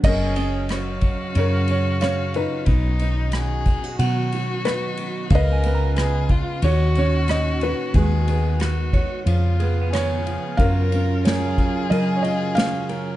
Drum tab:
CC |x-------|--------|--------|--------|
RD |-xxxxxxx|xxxxxxxx|xxxxxxxx|xxxxxxxx|
SD |--r---r-|--r---r-|--r---r-|--r---r-|
BD |o--o----|o--o----|o--o----|o--o----|

CC |--------|
RD |xxxxxxxx|
SD |--o---o-|
BD |o--o----|